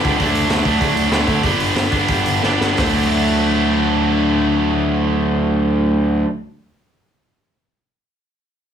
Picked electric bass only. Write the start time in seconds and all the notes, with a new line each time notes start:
0.04 C#2
0.20 D2
0.49 D2
0.65 D2
0.81 D2
0.94 D2
1.10 D2
1.28 D2
1.44 G1
1.75 G1
1.92 G1
2.09 G1
2.26 G1
2.43 G1
2.61 G1
2.78 D2